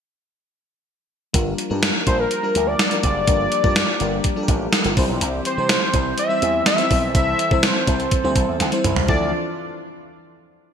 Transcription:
1.33 G1 F3 G3 A#3 D4 F4 G4 A#4, kick, closed hi-hat
1.58 closed hi-hat
1.70 G2 G3 D4 F4 A#4
1.83 snare, closed hi-hat
2.07 A#1 G3 D4 F4 A#4 C5, kick, closed hi-hat
2.19 A#4
2.31 closed hi-hat
2.43 G3 D4 F4 A#4
2.55 D2, closed hi-hat
2.67 D5
2.79 snare, closed hi-hat
2.91 G3 D4 F4 A#4, closed hi-hat
3.03 F#1 D5, kick, closed hi-hat
3.27 G1 G3 D4 F4 A#4, kick, closed hi-hat
3.52 closed hi-hat
3.64 G2 G3 D4 F4 A#4, kick
3.76 snare, closed hi-hat
4.00 G1 G3 D4 F4 A#4, closed hi-hat
4.24 kick, closed hi-hat
4.36 G3 D4 F4 A4
4.43 A#4
4.48 A1, kick, closed hi-hat
4.73 snare, closed hi-hat
4.84 G1 G3 D4 F4 A#4, closed hi-hat
4.97 C2 E3 G3 C4 E4 C5, kick, open hi-hat
5.09 B1
5.21 C2, closed hi-hat
5.45 C5, closed hi-hat
5.57 C3 G3 C4 E4 C5
5.69 snare, closed hi-hat
5.93 C2 G3 C4 E4 C5, kick, closed hi-hat
6.18 E5, closed hi-hat
6.29 G3 C4 E4 C5
6.42 E2, closed hi-hat
6.66 E5, snare, closed hi-hat
6.78 G3 C4 E4 C5, closed hi-hat
6.91 B1 A4, kick, open hi-hat
7.14 C2 G3 C4 E4 C5 E5, kick, closed hi-hat
7.39 closed hi-hat
7.51 C3 G3 C4 E4 C5, kick
7.63 C5, snare, closed hi-hat
7.87 C2 G3 C4 E4 C5, kick, closed hi-hat
8.00 closed hi-hat
8.11 kick, closed hi-hat
8.24 D2 G3 C4 E4 C5
8.36 C2, kick, closed hi-hat
8.48 E2
8.60 D2, snare, closed hi-hat
8.72 G3 C4 E4 C5, closed hi-hat
8.84 C2, closed hi-hat, mid tom
8.96 C2, floor tom
9.09 D2 E3 F3 D4 E4 F4 A4 D5, kick

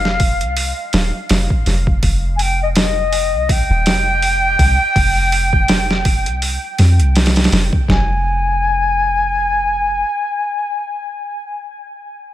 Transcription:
Already playing: F1 F5
0.05 snare
0.20 kick, open hi-hat
0.41 C2, closed hi-hat
0.57 open hi-hat
0.93 D#1, snare, open hi-hat
1.29 F1, snare, open hi-hat
1.50 kick
1.66 F1, snare, open hi-hat
1.87 kick
2.03 F1, kick, open hi-hat
2.36 G#5, open hi-hat
2.41 G5
2.62 D#5
2.76 D#5, snare, open hi-hat
3.13 open hi-hat
3.33 C2
3.49 G5, kick, open hi-hat
3.70 D#1
3.86 F1, snare, open hi-hat
4.22 open hi-hat
4.59 C2, kick, open hi-hat
4.96 F1, kick, open hi-hat
5.32 open hi-hat
5.53 kick
5.68 snare, open hi-hat
5.91 snare
6.05 kick, open hi-hat
6.26 C2, closed hi-hat
6.42 open hi-hat
6.79 F2, snare, open hi-hat
6.99 C2, closed hi-hat
7.16 snare, open hi-hat
7.26 snare, open hi-hat
7.36 snare, open hi-hat
7.44 snare, open hi-hat
7.52 F1, snare, open hi-hat
7.73 kick
7.88 F1 G#5, kick, snare

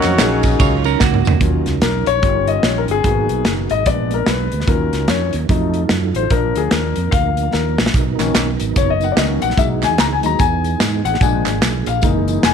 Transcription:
Already playing: D#3 F#3 A#3 C#4 D#4 F#4 A#4
0.03 F2, snare, clap, ride, tambourine
0.18 A#1 C#4 D#4 F#4 G#4, snare, clap, ride, tambourine
0.43 kick, ride, tambourine
0.60 C#2 F4 C#5, kick, ride, tambourine
0.84 C#4 A#4, ride, tambourine
1.00 C#2 A#3 F#4, kick, snare, clap, tambourine
1.14 mid tom
1.25 D2, floor tom, tambourine
1.39 D#2 F#3 C#4 D#4 F4 A#4, kick, closed hi-hat
1.66 C#2, snare, closed hi-hat
1.82 B1 A#4, snare, closed hi-hat
2.06 A#1 C#5, closed hi-hat
2.22 G1 G3 C#4 D#4 F4 A#4, kick, closed hi-hat
2.47 D#5, closed hi-hat
2.63 A#1 C#5, snare, closed hi-hat
2.78 A#4
2.88 G1 G#4, closed hi-hat
3.04 G#1 B2 F#3 A#3 B3 D#4 F#4 G#4, kick, closed hi-hat
3.29 B1, closed hi-hat
3.45 F#1, snare, closed hi-hat
3.70 G#1 D#5, closed hi-hat
3.86 A#1 G#3 A#3 B3 D4 D5, kick, closed hi-hat
4.11 A#4, closed hi-hat
4.26 B1 B4, snare, closed hi-hat
4.52 D2, closed hi-hat
4.60 snare
4.66 D#2 F3 F#3 C#4 D#4 F4 A#4, kick, closed hi-hat
4.72 F#3
4.93 C#2, snare, closed hi-hat
5.08 F2 C#5, snare, closed hi-hat
5.33 D#2, closed hi-hat
5.49 F2 F#3 A3 D#4 F4 A4, kick, closed hi-hat
5.74 closed hi-hat
5.89 F#2, snare, closed hi-hat
6.14 A1 C5, closed hi-hat
6.30 A#1 F3 A#3 C#4 D4 A#4, kick, closed hi-hat
6.36 D4
6.56 D2 G#4, closed hi-hat
6.71 D#2 A#4, snare, closed hi-hat
6.96 F2, closed hi-hat
7.11 D2 F5, kick, closed hi-hat
7.37 closed hi-hat
7.53 D#2 A#4, snare
7.78 A#1, snare
7.86 snare
7.93 B1 F#3 B3 D#4 A#4, kick, closed hi-hat, tambourine
8.18 A#1 D#3 A#3 C#4, snare, clap, closed hi-hat, tambourine
8.35 B1, snare, clap, closed hi-hat, tambourine
8.60 G#1, closed hi-hat, tambourine
8.76 F#1 C#5, kick, closed hi-hat, tambourine
8.90 D#5
9.01 F#5, closed hi-hat, tambourine
9.12 D#3 D5
9.16 C#2 A#3 C#4 D#5, snare, clap, closed hi-hat, tambourine
9.42 A#1 F#5, closed hi-hat, tambourine
9.50 snare
9.56 B1 E3 F#3 G#3 B3 D#4 G#4 E5, kick, closed hi-hat, tambourine
9.82 E2 G#5, snare, clap, closed hi-hat, tambourine
9.98 C#2 A#5, snare, clap, closed hi-hat, tambourine
10.13 G#5
10.23 D#2 F#3 G#3 D#4 A#5, closed hi-hat, tambourine
10.39 E2 G#5, kick, closed hi-hat, tambourine
10.64 closed hi-hat, tambourine
10.80 G#2, snare, clap, closed hi-hat, tambourine
11.05 A1 F#5, closed hi-hat, tambourine
11.14 snare
11.20 A#1 F3 G#3 A#3 D4 F#4 G#5, kick, closed hi-hat, tambourine
11.25 G#4
11.46 G#1, snare, clap, closed hi-hat, tambourine
11.62 B1, snare, clap, closed hi-hat, tambourine
11.86 A#1 F5, closed hi-hat, tambourine
12.02 F#1 E3 G#3 A#3 D#4 G#4, kick, closed hi-hat, tambourine
12.28 closed hi-hat, tambourine
12.43 E1 G#5, snare, clap, closed hi-hat, tambourine

